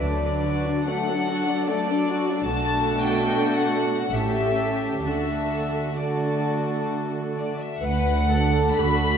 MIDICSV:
0, 0, Header, 1, 6, 480
1, 0, Start_track
1, 0, Key_signature, 2, "major"
1, 0, Tempo, 821918
1, 11, Time_signature, 3, 2, 24, 8
1, 2410, Tempo, 914634
1, 3850, Tempo, 938967
1, 5029, End_track
2, 0, Start_track
2, 0, Title_t, "Violin section"
2, 0, Program_c, 0, 48
2, 7, Note_on_c, 0, 74, 59
2, 488, Note_off_c, 0, 74, 0
2, 510, Note_on_c, 0, 78, 68
2, 970, Note_off_c, 0, 78, 0
2, 972, Note_on_c, 0, 74, 70
2, 1435, Note_on_c, 0, 81, 74
2, 1443, Note_off_c, 0, 74, 0
2, 1749, Note_off_c, 0, 81, 0
2, 1761, Note_on_c, 0, 79, 72
2, 2077, Note_off_c, 0, 79, 0
2, 2081, Note_on_c, 0, 78, 70
2, 2413, Note_off_c, 0, 78, 0
2, 2414, Note_on_c, 0, 76, 64
2, 2884, Note_off_c, 0, 76, 0
2, 2890, Note_on_c, 0, 76, 57
2, 3364, Note_off_c, 0, 76, 0
2, 3377, Note_on_c, 0, 74, 41
2, 3852, Note_off_c, 0, 74, 0
2, 4105, Note_on_c, 0, 74, 44
2, 4212, Note_off_c, 0, 74, 0
2, 4219, Note_on_c, 0, 76, 51
2, 4333, Note_off_c, 0, 76, 0
2, 4338, Note_on_c, 0, 78, 76
2, 4815, Note_on_c, 0, 83, 86
2, 4826, Note_off_c, 0, 78, 0
2, 5029, Note_off_c, 0, 83, 0
2, 5029, End_track
3, 0, Start_track
3, 0, Title_t, "Violin section"
3, 0, Program_c, 1, 48
3, 0, Note_on_c, 1, 71, 40
3, 21, Note_on_c, 1, 57, 41
3, 131, Note_off_c, 1, 57, 0
3, 141, Note_on_c, 1, 62, 38
3, 259, Note_on_c, 1, 66, 44
3, 261, Note_off_c, 1, 62, 0
3, 380, Note_off_c, 1, 66, 0
3, 390, Note_on_c, 1, 62, 46
3, 478, Note_off_c, 1, 71, 0
3, 504, Note_off_c, 1, 62, 0
3, 509, Note_on_c, 1, 69, 54
3, 510, Note_on_c, 1, 57, 45
3, 623, Note_off_c, 1, 57, 0
3, 642, Note_on_c, 1, 62, 43
3, 746, Note_off_c, 1, 62, 0
3, 753, Note_on_c, 1, 66, 48
3, 859, Note_off_c, 1, 66, 0
3, 865, Note_on_c, 1, 62, 44
3, 973, Note_off_c, 1, 62, 0
3, 985, Note_on_c, 1, 57, 50
3, 1091, Note_off_c, 1, 57, 0
3, 1103, Note_on_c, 1, 62, 45
3, 1210, Note_off_c, 1, 62, 0
3, 1229, Note_on_c, 1, 66, 48
3, 1334, Note_off_c, 1, 66, 0
3, 1346, Note_on_c, 1, 62, 50
3, 1444, Note_off_c, 1, 69, 0
3, 1453, Note_off_c, 1, 62, 0
3, 1464, Note_on_c, 1, 66, 58
3, 1471, Note_on_c, 1, 69, 60
3, 2400, Note_off_c, 1, 66, 0
3, 2403, Note_off_c, 1, 69, 0
3, 2429, Note_on_c, 1, 69, 48
3, 2431, Note_on_c, 1, 67, 49
3, 2888, Note_off_c, 1, 69, 0
3, 2889, Note_off_c, 1, 67, 0
3, 2904, Note_on_c, 1, 69, 36
3, 2908, Note_on_c, 1, 66, 37
3, 3371, Note_off_c, 1, 69, 0
3, 3378, Note_off_c, 1, 66, 0
3, 3382, Note_on_c, 1, 69, 39
3, 3384, Note_on_c, 1, 66, 37
3, 4210, Note_off_c, 1, 69, 0
3, 4211, Note_off_c, 1, 66, 0
3, 4335, Note_on_c, 1, 71, 65
3, 4560, Note_off_c, 1, 71, 0
3, 4587, Note_on_c, 1, 69, 52
3, 4829, Note_off_c, 1, 69, 0
3, 4835, Note_on_c, 1, 66, 55
3, 5029, Note_off_c, 1, 66, 0
3, 5029, End_track
4, 0, Start_track
4, 0, Title_t, "Viola section"
4, 0, Program_c, 2, 48
4, 0, Note_on_c, 2, 62, 41
4, 7, Note_on_c, 2, 54, 45
4, 1414, Note_off_c, 2, 54, 0
4, 1417, Note_off_c, 2, 62, 0
4, 1438, Note_on_c, 2, 57, 58
4, 1444, Note_on_c, 2, 62, 56
4, 2387, Note_off_c, 2, 57, 0
4, 2389, Note_off_c, 2, 62, 0
4, 2414, Note_on_c, 2, 61, 46
4, 2415, Note_on_c, 2, 57, 44
4, 2881, Note_off_c, 2, 57, 0
4, 2890, Note_off_c, 2, 61, 0
4, 2894, Note_on_c, 2, 62, 37
4, 2895, Note_on_c, 2, 57, 39
4, 3366, Note_off_c, 2, 57, 0
4, 3375, Note_off_c, 2, 62, 0
4, 3379, Note_on_c, 2, 57, 37
4, 3381, Note_on_c, 2, 62, 38
4, 4209, Note_off_c, 2, 57, 0
4, 4209, Note_off_c, 2, 62, 0
4, 4578, Note_on_c, 2, 69, 50
4, 4581, Note_on_c, 2, 62, 49
4, 5029, Note_off_c, 2, 62, 0
4, 5029, Note_off_c, 2, 69, 0
4, 5029, End_track
5, 0, Start_track
5, 0, Title_t, "Cello section"
5, 0, Program_c, 3, 48
5, 7, Note_on_c, 3, 50, 47
5, 417, Note_off_c, 3, 50, 0
5, 1441, Note_on_c, 3, 47, 57
5, 2388, Note_off_c, 3, 47, 0
5, 2407, Note_on_c, 3, 45, 46
5, 2877, Note_off_c, 3, 45, 0
5, 2886, Note_on_c, 3, 50, 38
5, 4200, Note_off_c, 3, 50, 0
5, 4335, Note_on_c, 3, 38, 60
5, 4768, Note_off_c, 3, 38, 0
5, 4824, Note_on_c, 3, 38, 56
5, 5029, Note_off_c, 3, 38, 0
5, 5029, End_track
6, 0, Start_track
6, 0, Title_t, "Double bass section"
6, 0, Program_c, 4, 48
6, 5, Note_on_c, 4, 38, 51
6, 401, Note_off_c, 4, 38, 0
6, 1432, Note_on_c, 4, 35, 58
6, 1889, Note_off_c, 4, 35, 0
6, 2401, Note_on_c, 4, 33, 44
6, 2863, Note_off_c, 4, 33, 0
6, 2877, Note_on_c, 4, 38, 36
6, 3346, Note_off_c, 4, 38, 0
6, 4328, Note_on_c, 4, 38, 65
6, 4764, Note_off_c, 4, 38, 0
6, 4820, Note_on_c, 4, 38, 60
6, 5029, Note_off_c, 4, 38, 0
6, 5029, End_track
0, 0, End_of_file